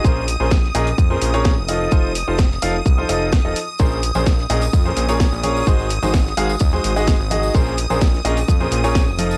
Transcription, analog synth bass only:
X:1
M:4/4
L:1/16
Q:1/4=128
K:Bbm
V:1 name="Analog synth bass" clef=bass
B,,,3 B,,,3 B,,,2 F,,2 B,,,3 F,,,3 | F,,,3 F,,,3 F,,,2 C,,2 F,,,3 E,,, z2 | B,,,3 B,,,3 B,,,2 F,,2 B,,,3 B,,,3 | A,,,3 A,,,3 A,,,2 E,,2 A,,,3 A,,,3 |
B,,,3 B,,,3 B,,,2 F,,2 B,,,3 F,,,3 |]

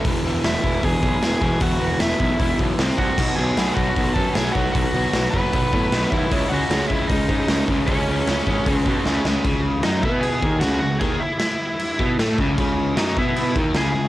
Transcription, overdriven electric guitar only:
X:1
M:4/4
L:1/8
Q:1/4=153
K:C#m
V:1 name="Overdriven electric guitar" clef=bass
[E,,B,,E,] [E,,B,,E,] [E,,B,,E,] [E,,B,,E,] [E,,B,,E,] [E,,B,,E,] [E,,B,,E,] [E,,B,,E,] | [E,,B,,E,] [E,,B,,E,] [E,,B,,E,] [E,,B,,E,] [E,,B,,E,] [E,,B,,E,] [=C,=G,=C] [C,G,C] | [B,,F,B,] [B,,F,B,] [B,,F,B,] [B,,F,B,] [B,,F,B,] [B,,F,B,] [B,,F,B,] [B,,F,B,] | [B,,F,B,] [B,,F,B,] [B,,F,B,] [B,,F,B,] [B,,F,B,] [B,,F,B,] [B,,F,B,] [B,,F,B,] |
[C,G,C] [C,G,C] [C,G,C] [C,G,C] [C,G,C] [C,G,C] [C,G,C] [C,G,C] | [C,G,C] [C,G,C] [C,G,C] [C,G,C] [C,G,C] [C,G,C] [C,G,C] [C,G,C] | C,2 F, B,2 D, C, C, | D, z4 B, A, C, |
C,2 F, B,2 D, C, C, |]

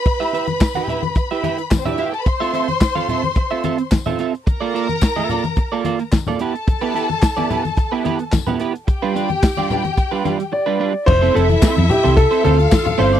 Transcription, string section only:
X:1
M:4/4
L:1/16
Q:1/4=109
K:Flyd
V:1 name="String section"
[Bb]12 z/2 [Cc]/2 [Dd]/2 [Ee]/2 [Ff]/2 [Gg]/2 [Aa]/2 [Bb]/2 | [cc']12- [cc']2 z2 | [_B_b]12 z2 [Aa]2- | [Aa]12- [Aa]2 z2 |
[Gg]12- [Gg]2 z2 | [Ee]8- [Ee]2 [Ff]6 |]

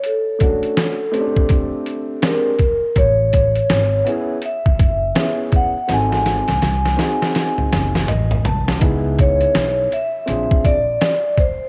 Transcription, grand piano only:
X:1
M:4/4
L:1/8
Q:"Swing 16ths" 1/4=82
K:Alyd
V:1 name="Grand piano"
z [A,C=DF] z [A,^B,CD=G]3 [^G,B,D=G] z | z3 [B,CEG] z2 [B,CEG] z | [^B,DFA] z2 [B,DFG]3 d a | [B,DEG]3 z [^B,=D^EG] z3 |]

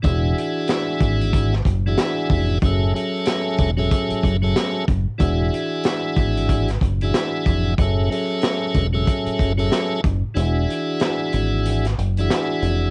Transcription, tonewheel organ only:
X:1
M:4/4
L:1/16
Q:"Swing 16ths" 1/4=93
K:Emix
V:1 name="Tonewheel organ"
[E,DFGe]8- [E,DFGe] z2 [E,DFGe]4- [E,DFGe] | [F,CGAe]2 [F,CGAe]4- [F,CGAe] [F,CGAe]4 [F,CGAe]3 z2 | [E,DFGe]8- [E,DFGe] z2 [E,DFGe]4- [E,DFGe] | [F,CGAe]2 [F,CGAe]4- [F,CGAe] [F,CGAe]4 [F,CGAe]3 z2 |
[E,DFGe]8- [E,DFGe] z2 [E,DFGe]4- [E,DFGe] |]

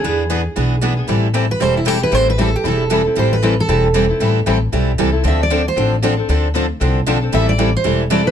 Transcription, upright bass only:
X:1
M:4/4
L:1/8
Q:"Swing" 1/4=231
K:Am
V:1 name="Upright bass" clef=bass
E,,4 B,,,4 | A,,,4 E,,,4 | A,,,4 E,,,4 | A,,,4 E,,,4 |
A,,,2 A,,,2 B,,,2 z2 | D,,4 A,,,4 | D,,4 C,,2 B,,,2 | A,,,4 E,,,4 |]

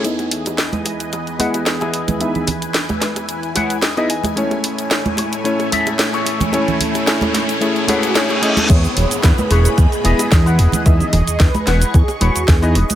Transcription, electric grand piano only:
X:1
M:4/4
L:1/16
Q:"Swing 16ths" 1/4=111
K:E
V:1 name="Electric grand piano"
[B,DEGd]8- [B,DEGd]2 [B,EGd]6 | [B,DEGe]2 z8 z3 [B,DEGd] z2 | [A,CEcg]8 [A,CEcg]8 | [A,CEcg]4 [A,CEcg]4 [A,CEGc]2 [A,CEGc]2 [A,CEGc]2 [A,CEGc]2 |
[B,EGd']8- [B,EGd']2 [B,EGd']6 | [B,DEGe]2 z8 z3 [B,DEGd] z2 |]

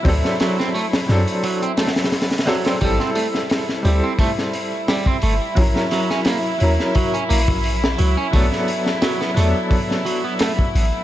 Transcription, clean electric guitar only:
X:1
M:4/4
L:1/16
Q:"Swing 16ths" 1/4=87
K:Ador
V:1 name="Clean electric guitar"
z2 F, C A, z3 F, C A, z3 F, C | G, C A, z3 G, C A, z3 G, C A, z | z2 F, ^C ^A, z3 F, C A, z3 F, C | A, z3 F, B, A, z3 F, B, A, z3 |]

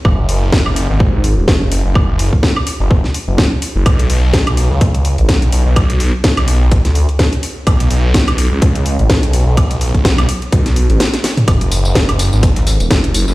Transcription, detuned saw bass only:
X:1
M:4/4
L:1/16
Q:"Swing 16ths" 1/4=126
K:F#m
V:1 name="Detuned saw bass" clef=bass
F,,,2 F,,,3 F,,,2 G,,,4 E,,, F,,,2 F,,, F,,,- | F,,,3 z4 F,,,2 z2 F,,,2 z2 F,,, | B,,,2 B,,,3 B,,,2 C,,4 A,,, B,,,2 B,,, B,,,- | B,,,3 z2 B,,,4 D,,2 z4 z |
B,,,2 B,,,3 B,,,2 C,,4 A,,, B,,,2 B,,, B,,,- | B,,,3 B,,,3 z2 B,,,3 A,,, z4 | F,,,2 F,,,3 F,,,2 G,,,4 E,,, F,,,2 F,,, F,,, |]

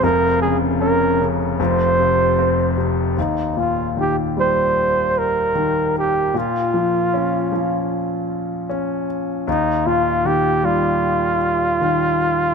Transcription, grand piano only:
X:1
M:4/4
L:1/8
Q:1/4=77
K:Ebmix
V:1 name="Grand piano" clef=bass
[F,,,F,,] D, D D, [F,,,F,,] C, C C, | E,, B,, E, G,3 E,2 | B,, F, D F,3 D2 | E,, B,, E, G,3 E,2 |]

